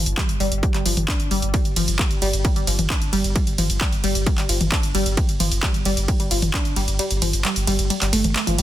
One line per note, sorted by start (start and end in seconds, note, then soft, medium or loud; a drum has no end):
0.06 0.17 G1 medium
0.06 closed hi-hat medium
0.17 0.22 G3 medium
0.17 kick loud
0.17 clap loud
0.17 closed hi-hat medium
0.17 mid tom medium
0.29 0.40 G1 medium
0.29 closed hi-hat medium
0.40 0.51 G1 loud
0.40 0.45 G3 loud
0.40 open hi-hat loud
0.52 0.63 G1 medium
0.52 closed hi-hat medium
0.63 0.68 G3 medium
0.63 kick loud
0.63 closed hi-hat medium
0.74 0.85 G1 medium
0.74 0.79 G3 medium
0.74 clap soft
0.74 closed hi-hat medium
0.86 0.96 G1 loud
0.86 0.90 F3 medium
0.86 open hi-hat loud
0.97 1.08 G1 medium
0.97 closed hi-hat medium
0.97 mid tom loud
1.08 1.15 D4 loud
1.08 kick loud
1.08 clap loud
1.08 closed hi-hat medium
1.20 1.30 G1 medium
1.20 closed hi-hat medium
1.31 1.42 G1 loud
1.31 1.36 G3 loud
1.31 open hi-hat loud
1.42 1.54 G1 medium
1.42 closed hi-hat medium
1.54 1.58 G3 medium
1.54 kick loud
1.54 closed hi-hat medium
1.54 ride medium
1.65 1.76 G1 medium
1.65 closed hi-hat medium
1.76 1.87 G1 loud
1.76 1.81 F3 medium
1.76 open hi-hat loud
1.76 mid tom loud
1.76 ride medium
1.88 1.99 G1 medium
1.88 closed hi-hat medium
1.99 2.04 G3 medium
1.99 kick loud
1.99 clap loud
1.99 closed hi-hat medium
1.99 ride medium
2.11 2.21 G1 medium
2.11 closed hi-hat medium
2.22 2.33 G1 loud
2.22 2.27 G3 loud
2.22 open hi-hat medium
2.22 ride medium
2.33 2.44 G1 medium
2.33 closed hi-hat medium
2.45 2.49 G3 medium
2.45 kick loud
2.45 closed hi-hat medium
2.45 ride medium
2.56 2.67 G1 medium
2.56 2.61 G3 medium
2.56 closed hi-hat medium
2.67 2.78 G1 loud
2.67 2.72 F3 medium
2.67 open hi-hat loud
2.67 ride medium
2.79 2.90 G1 medium
2.79 closed hi-hat medium
2.79 mid tom loud
2.90 2.97 D4 loud
2.90 kick loud
2.90 clap loud
2.90 closed hi-hat medium
2.90 ride medium
3.02 3.12 G1 medium
3.02 closed hi-hat medium
3.13 3.24 G1 loud
3.13 3.17 G3 loud
3.13 open hi-hat medium
3.13 ride medium
3.24 3.35 G1 medium
3.24 closed hi-hat medium
3.35 3.40 G3 medium
3.35 kick loud
3.35 closed hi-hat medium
3.35 ride medium
3.47 3.58 G1 medium
3.47 closed hi-hat medium
3.58 3.69 G1 loud
3.58 3.63 F3 medium
3.58 open hi-hat loud
3.58 mid tom loud
3.58 ride medium
3.70 3.81 G1 medium
3.70 closed hi-hat medium
3.81 3.86 G3 medium
3.81 kick loud
3.81 clap loud
3.81 closed hi-hat medium
3.81 ride medium
3.92 4.03 G1 medium
3.92 closed hi-hat medium
4.04 4.15 G1 loud
4.04 4.08 G3 loud
4.04 open hi-hat medium
4.04 ride medium
4.15 4.26 G1 medium
4.15 closed hi-hat medium
4.26 4.31 G3 medium
4.26 kick loud
4.26 closed hi-hat medium
4.26 ride medium
4.38 4.49 G1 medium
4.38 4.42 G3 medium
4.38 clap soft
4.38 closed hi-hat medium
4.49 4.60 G1 loud
4.49 4.54 F3 medium
4.49 open hi-hat loud
4.49 ride medium
4.61 4.72 G1 medium
4.61 closed hi-hat medium
4.61 mid tom loud
4.72 4.79 D4 loud
4.72 kick loud
4.72 clap loud
4.72 closed hi-hat medium
4.72 ride medium
4.83 4.94 G1 medium
4.83 closed hi-hat medium
4.95 5.06 G1 loud
4.95 4.99 G3 loud
4.95 open hi-hat medium
4.95 ride medium
5.06 5.17 G1 medium
5.06 closed hi-hat medium
5.17 5.22 G3 medium
5.17 kick loud
5.17 closed hi-hat medium
5.17 ride medium
5.29 5.40 G1 medium
5.29 closed hi-hat medium
5.40 5.51 G1 loud
5.40 5.45 F3 medium
5.40 open hi-hat loud
5.40 mid tom medium
5.40 ride medium
5.52 5.63 G1 medium
5.52 closed hi-hat medium
5.63 5.68 G3 medium
5.63 kick loud
5.63 clap loud
5.63 closed hi-hat medium
5.63 ride medium
5.74 5.85 G1 medium
5.74 closed hi-hat medium
5.85 5.96 G1 loud
5.85 5.90 G3 loud
5.85 open hi-hat medium
5.85 ride medium
5.97 6.08 G1 medium
5.97 closed hi-hat medium
6.08 6.13 G3 medium
6.08 kick loud
6.08 closed hi-hat medium
6.08 ride medium
6.20 6.30 G1 medium
6.20 6.24 G3 medium
6.20 closed hi-hat medium
6.31 6.42 G1 loud
6.31 6.36 F3 medium
6.31 open hi-hat loud
6.31 ride medium
6.42 6.54 G1 medium
6.42 closed hi-hat medium
6.42 mid tom loud
6.54 6.61 D4 loud
6.54 kick loud
6.54 clap loud
6.54 closed hi-hat medium
6.54 ride medium
6.65 6.76 G1 medium
6.65 closed hi-hat medium
6.76 6.87 G1 loud
6.76 6.81 G3 loud
6.76 open hi-hat medium
6.76 ride medium
6.88 6.99 G1 medium
6.88 closed hi-hat medium
6.99 7.04 G3 medium
6.99 closed hi-hat medium
6.99 ride medium
7.11 7.21 G1 medium
7.11 closed hi-hat medium
7.22 7.33 G1 loud
7.22 7.27 F3 medium
7.22 open hi-hat loud
7.22 mid tom medium
7.22 ride medium
7.33 7.44 G1 medium
7.33 closed hi-hat medium
7.45 7.49 G3 medium
7.45 clap loud
7.45 closed hi-hat medium
7.45 ride medium
7.56 7.67 G1 medium
7.56 closed hi-hat medium
7.67 7.78 G1 loud
7.67 7.72 G3 loud
7.67 open hi-hat medium
7.67 ride medium
7.79 7.90 G1 medium
7.79 closed hi-hat medium
7.90 7.95 G3 medium
7.90 closed hi-hat medium
7.90 ride medium
8.02 8.12 G1 medium
8.02 8.06 G3 medium
8.02 clap soft
8.02 closed hi-hat medium
8.13 8.24 G1 loud
8.13 8.20 A3 loud
8.13 open hi-hat loud
8.13 ride medium
8.24 8.35 G1 medium
8.24 closed hi-hat medium
8.24 mid tom medium
8.36 8.38 A3 medium
8.36 clap loud
8.36 closed hi-hat medium
8.36 ride medium
8.47 8.58 G1 medium
8.47 8.52 F3 loud
8.47 closed hi-hat medium
8.47 mid tom medium
8.58 8.62 G1 loud
8.58 8.62 G3 medium
8.58 open hi-hat medium
8.58 ride medium